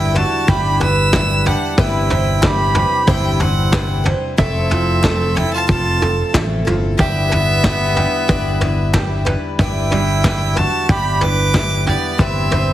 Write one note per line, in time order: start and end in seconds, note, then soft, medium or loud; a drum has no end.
0.00 0.24 G1 loud
0.00 1.74 D3 medium
0.00 0.15 G3 medium
0.00 0.81 G3 medium
0.00 4.35 G3 medium
0.00 0.16 D4 medium
0.00 4.35 D4 medium
0.00 0.15 E4 medium
0.00 0.19 E4 loud
0.00 1.75 E4 medium
0.00 0.13 B4 medium
0.00 0.80 B4 medium
0.00 0.48 E5 loud
0.00 0.18 G5 loud
0.14 0.47 D4 medium
0.14 0.48 E4 medium
0.14 0.52 F#4 medium
0.14 0.48 B4 medium
0.14 0.50 A5 loud
0.14 floor tom loud
0.47 1.53 G1 loud
0.47 0.80 G3 medium
0.47 0.81 D4 loud
0.47 0.81 E4 medium
0.47 1.46 G4 medium
0.47 0.82 G4 medium
0.47 0.79 B4 loud
0.47 0.81 B5 loud
0.47 kick loud
0.47 floor tom medium
0.80 1.12 D4 soft
0.80 1.13 E4 medium
0.80 1.13 B4 medium
0.80 1.77 B4 medium
0.80 1.49 B4 loud
0.80 1.49 E6 loud
0.80 floor tom medium
1.12 1.45 G3 medium
1.12 1.46 D4 medium
1.12 1.46 E4 medium
1.12 1.44 B4 medium
1.12 1.79 E5 medium
1.12 kick loud
1.12 snare loud
1.12 clap loud
1.12 floor tom medium
1.45 1.79 D4 medium
1.45 1.78 D4 soft
1.45 1.78 E4 soft
1.45 1.79 G4 medium
1.45 1.78 B4 medium
1.45 1.79 F#5 loud
1.45 floor tom medium
1.78 2.83 G1 loud
1.78 6.95 C3 medium
1.78 2.11 G3 medium
1.78 2.11 C4 medium
1.78 2.10 E4 medium
1.78 2.46 E4 medium
1.78 2.75 B4 loud
1.78 2.08 B4 medium
1.78 2.46 G5 medium
1.78 kick loud
1.78 floor tom medium
2.09 2.42 C4 medium
2.09 2.44 E4 medium
2.09 2.43 B4 medium
2.09 3.07 C5 medium
2.09 floor tom medium
2.43 2.76 G3 medium
2.43 2.76 C4 medium
2.43 2.75 E4 medium
2.43 3.11 G4 medium
2.43 2.73 B4 medium
2.43 3.11 B5 loud
2.43 kick loud
2.43 snare loud
2.43 clap medium
2.43 floor tom medium
2.75 3.07 C4 soft
2.75 3.08 E4 medium
2.75 3.08 B4 medium
2.75 3.72 B4 medium
2.75 floor tom medium
3.07 4.13 G1 loud
3.07 3.40 G3 medium
3.07 3.41 C4 loud
3.07 3.43 E4 medium
3.07 3.41 E4 loud
3.07 3.39 B4 loud
3.07 4.05 C5 medium
3.07 3.42 G5 loud
3.07 kick loud
3.07 floor tom medium
3.40 4.06 C4 medium
3.40 3.73 C4 medium
3.40 3.74 E4 medium
3.40 3.73 B4 medium
3.40 4.06 F#5 loud
3.40 floor tom medium
3.72 4.06 G3 medium
3.72 4.06 C4 medium
3.72 4.05 E4 medium
3.72 4.38 B4 medium
3.72 4.03 B4 medium
3.72 kick loud
3.72 snare loud
3.72 clap loud
3.72 floor tom loud
4.04 4.38 C4 soft
4.04 4.38 E4 medium
4.04 4.38 B4 medium
4.04 4.39 C5 medium
4.04 floor tom medium
4.37 5.44 F1 loud
4.37 4.71 F3 medium
4.37 6.96 F3 medium
4.37 6.96 A3 medium
4.37 4.71 A3 medium
4.37 4.71 C4 medium
4.37 5.39 C4 medium
4.37 4.70 E4 medium
4.37 4.68 A4 medium
4.37 5.37 E5 medium
4.37 5.69 E5 loud
4.37 kick loud
4.37 floor tom medium
4.70 5.02 C4 soft
4.70 5.03 E4 medium
4.70 5.68 F4 medium
4.70 5.03 A4 medium
4.70 floor tom medium
5.02 5.36 A3 medium
5.02 5.36 C4 medium
5.02 5.35 E4 medium
5.02 6.01 A4 medium
5.02 5.33 A4 medium
5.02 kick loud
5.02 snare loud
5.02 clap medium
5.02 floor tom loud
5.34 5.67 C4 soft
5.34 5.69 E4 medium
5.34 5.53 E4 medium
5.34 5.68 A4 medium
5.34 5.52 G5 loud
5.34 floor tom medium
5.53 5.69 F4 medium
5.53 5.68 A5 loud
5.68 6.22 F1 loud
5.68 6.01 F3 medium
5.68 6.01 A3 medium
5.68 6.01 C4 medium
5.68 6.66 F4 medium
5.68 6.31 F4 medium
5.68 5.99 A4 loud
5.68 6.30 A5 loud
5.68 kick loud
5.68 floor tom medium
6.00 6.33 C4 soft
6.00 6.33 A4 medium
6.00 6.99 A4 medium
6.00 floor tom medium
6.33 6.63 A1 medium
6.33 6.66 A3 medium
6.33 6.67 C4 medium
6.33 6.65 E4 medium
6.33 6.64 A4 medium
6.33 7.00 E5 medium
6.33 kick loud
6.33 snare loud
6.33 clap loud
6.33 floor tom medium
6.65 6.96 G1 medium
6.65 6.98 C4 medium
6.65 6.98 E4 medium
6.65 6.99 F4 medium
6.65 6.98 A4 medium
6.65 floor tom medium
6.98 8.04 G1 loud
6.98 12.15 D3 medium
6.98 7.31 G3 medium
6.98 12.73 G3 medium
6.98 9.23 B3 loud
6.98 7.31 D4 medium
6.98 12.73 D4 medium
6.98 7.30 E4 medium
6.98 7.96 G4 loud
6.98 7.28 B4 medium
6.98 9.22 E5 loud
6.98 kick loud
6.98 floor tom medium
7.29 7.62 D4 soft
7.29 7.63 E4 medium
7.29 7.63 B4 medium
7.29 8.28 B4 medium
7.29 floor tom medium
7.62 7.96 G3 medium
7.62 7.96 D4 medium
7.62 7.95 E4 medium
7.62 7.94 B4 medium
7.62 kick loud
7.62 snare loud
7.62 clap loud
7.62 floor tom medium
7.95 8.28 D4 medium
7.95 8.28 E4 medium
7.95 8.93 G4 medium
7.95 8.28 B4 medium
7.95 floor tom medium
8.28 9.34 G1 loud
8.28 8.61 G3 medium
8.28 8.62 D4 loud
8.28 8.61 E4 loud
8.28 9.25 B4 medium
8.28 8.60 B4 loud
8.28 kick loud
8.28 floor tom loud
8.61 8.93 D4 medium
8.61 8.94 E4 medium
8.61 8.94 B4 medium
8.61 floor tom medium
8.93 9.26 G3 medium
8.93 9.27 D4 medium
8.93 9.25 E4 medium
8.93 10.24 G4 medium
8.93 9.24 B4 medium
8.93 kick loud
8.93 snare loud
8.93 clap loud
8.93 floor tom medium
9.25 9.58 D4 medium
9.25 9.59 E4 medium
9.25 9.58 B4 medium
9.25 10.23 B4 medium
9.25 floor tom medium
9.59 10.64 G1 loud
9.59 9.92 G3 medium
9.59 9.92 D4 medium
9.59 9.91 E4 loud
9.59 10.60 E4 loud
9.59 9.89 B4 medium
9.59 10.89 E5 loud
9.59 10.59 G5 loud
9.59 kick loud
9.59 floor tom loud
9.91 11.22 G3 medium
9.91 10.23 D4 medium
9.91 10.24 E4 medium
9.91 10.24 B4 medium
9.91 floor tom medium
10.23 10.56 G3 medium
10.23 10.57 D4 medium
10.23 10.56 E4 medium
10.23 11.21 B4 medium
10.23 10.54 B4 medium
10.23 kick loud
10.23 snare loud
10.23 clap loud
10.23 floor tom medium
10.55 10.88 D4 medium
10.55 10.89 E4 medium
10.55 10.90 F#4 medium
10.55 10.89 B4 medium
10.55 10.90 A5 loud
10.55 floor tom medium
10.89 11.94 G1 loud
10.89 11.21 G3 medium
10.89 11.22 D4 medium
10.89 11.22 E4 medium
10.89 11.86 G4 medium
10.89 11.25 G4 loud
10.89 11.20 B4 medium
10.89 11.25 B5 loud
10.89 kick loud
10.89 floor tom medium
11.21 11.54 D4 soft
11.21 11.54 E4 soft
11.21 11.54 B4 medium
11.21 12.19 B4 medium
11.21 11.87 B4 loud
11.21 11.88 D6 loud
11.21 floor tom medium
11.54 11.86 G3 medium
11.54 11.87 D4 medium
11.54 11.87 E4 medium
11.54 11.85 B4 medium
11.54 12.20 E5 medium
11.54 kick loud
11.54 snare loud
11.54 clap medium
11.54 floor tom medium
11.86 12.22 B3 medium
11.86 12.19 D4 soft
11.86 12.19 E4 medium
11.86 12.19 G4 medium
11.86 12.19 B4 medium
11.86 12.22 D5 loud
11.86 floor tom medium
12.18 12.73 G1 loud
12.18 12.73 C3 medium
12.18 12.51 G3 medium
12.18 12.52 C4 medium
12.18 12.73 C4 loud
12.18 12.52 E4 medium
12.18 12.73 B4 loud
12.18 12.50 B4 medium
12.18 12.73 E5 loud
12.18 kick loud
12.18 floor tom medium
12.51 12.73 C4 medium
12.51 12.73 E4 medium
12.51 12.73 B4 medium
12.51 12.73 C5 medium
12.51 floor tom medium